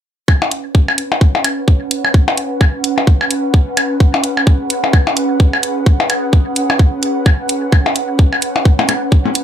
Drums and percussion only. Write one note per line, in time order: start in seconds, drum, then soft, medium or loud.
0.28 kick loud
0.28 percussion blips medium
0.42 percussion blips medium
0.51 closed hi-hat medium
0.75 kick loud
0.88 percussion blips medium
0.98 closed hi-hat medium
1.12 percussion blips medium
1.21 kick loud
1.35 percussion blips medium
1.44 closed hi-hat medium
1.44 percussion blips medium
1.68 kick loud
1.91 closed hi-hat medium
2.05 percussion blips medium
2.14 kick loud
2.28 percussion blips medium
2.37 closed hi-hat medium
2.61 kick loud
2.61 percussion blips medium
2.84 closed hi-hat medium
2.98 percussion blips medium
3.07 kick loud
3.21 percussion blips medium
3.31 closed hi-hat medium
3.54 kick loud
3.77 closed hi-hat medium
3.77 percussion blips medium
4.00 kick loud
4.14 percussion blips medium
4.24 closed hi-hat medium
4.37 percussion blips medium
4.47 kick loud
4.70 closed hi-hat medium
4.84 percussion blips medium
4.93 kick loud
4.93 percussion blips medium
5.07 percussion blips medium
5.17 closed hi-hat medium
5.40 kick loud
5.53 percussion blips medium
5.63 closed hi-hat medium
5.86 kick loud
6.00 percussion blips medium
6.10 closed hi-hat medium
6.10 percussion blips medium
6.33 kick loud
6.56 closed hi-hat medium
6.70 percussion blips medium
6.79 kick loud
7.03 closed hi-hat medium
7.26 kick loud
7.26 percussion blips medium
7.49 closed hi-hat medium
7.72 kick loud
7.72 percussion blips medium
7.86 percussion blips medium
7.96 closed hi-hat medium
8.19 kick loud
8.33 percussion blips medium
8.42 closed hi-hat medium
8.56 percussion blips medium
8.65 kick loud
8.79 percussion blips medium
8.89 closed hi-hat medium
8.89 percussion blips medium
9.12 kick loud
9.26 percussion blips medium
9.35 closed hi-hat medium